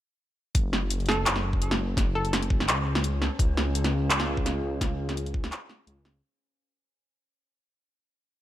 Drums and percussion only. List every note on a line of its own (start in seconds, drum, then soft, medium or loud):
0.55 kick loud
0.55 closed hi-hat medium
0.73 snare medium
0.90 closed hi-hat medium
1.00 closed hi-hat soft
1.06 snare medium
1.06 closed hi-hat soft
1.12 closed hi-hat soft
1.26 clap loud
1.26 closed hi-hat medium
1.36 snare medium
1.53 kick medium
1.62 closed hi-hat medium
1.71 snare medium
1.97 kick loud
1.97 snare medium
1.97 closed hi-hat medium
2.25 closed hi-hat soft
2.33 snare medium
2.33 closed hi-hat medium
2.43 closed hi-hat soft
2.50 kick loud
2.60 snare medium
2.68 clap loud
2.68 closed hi-hat medium
2.95 snare medium
3.04 closed hi-hat medium
3.22 snare medium
3.39 kick loud
3.39 closed hi-hat medium
3.57 snare medium
3.75 closed hi-hat medium
3.84 snare medium
3.84 closed hi-hat soft
4.10 clap loud
4.10 closed hi-hat medium
4.20 snare medium
4.37 kick medium
4.46 snare soft
4.46 closed hi-hat medium
4.81 kick loud
4.81 snare medium
4.81 closed hi-hat medium
5.09 snare medium
5.09 closed hi-hat soft
5.17 closed hi-hat medium
5.26 closed hi-hat soft
5.34 kick loud
5.44 snare medium
5.52 clap loud
5.52 closed hi-hat medium
5.69 snare soft
5.87 closed hi-hat medium
6.05 snare medium